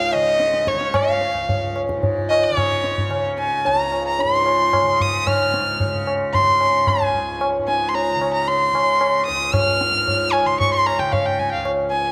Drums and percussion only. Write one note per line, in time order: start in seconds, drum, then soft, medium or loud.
0.13 tabla na medium
0.40 tabla te medium
0.54 tabla te medium
0.67 tabla ke medium
0.81 tabla te medium
0.94 tabla na loud
0.94 tabla ge medium
1.21 tabla te medium
1.49 tabla tin medium
1.49 tabla ge medium
1.76 tabla na medium
1.89 tabla ke medium
2.03 tabla tin medium
2.03 tabla ge medium
2.31 tabla na medium
2.57 tabla na medium
2.57 tabla ge medium
2.84 tabla te medium
2.98 tabla ge medium
3.11 tabla na medium
3.38 tabla te medium
3.65 tabla tin medium
3.92 tabla na medium
4.19 tabla tin medium
4.46 tabla na medium
4.73 tabla na medium
4.73 tabla ge medium
5.00 tabla ge medium
5.27 tabla na medium
5.27 tabla ge medium
5.54 tabla te medium
5.80 tabla tin medium
5.80 tabla ge medium
6.07 tabla na medium
6.34 tabla tin medium
6.34 tabla ge medium
6.61 tabla na medium
6.87 tabla na medium
6.87 tabla ge medium
7.14 tabla ge medium
7.41 tabla na medium
7.68 tabla te medium
7.95 tabla tin medium
8.21 tabla na medium
8.48 tabla tin medium
8.75 tabla na medium
9.01 tabla na medium
9.28 tabla te medium
9.54 tabla na loud
9.54 tabla ge medium
9.81 tabla te medium
10.07 tabla tin medium
10.07 tabla ge medium
10.33 tabla na medium
10.60 tabla tin medium
10.60 tabla ge medium
10.87 tabla na medium
10.99 tabla ke medium
11.13 tabla na medium
11.13 tabla ge medium
11.39 tabla ge soft
11.65 tabla na medium
11.92 tabla te medium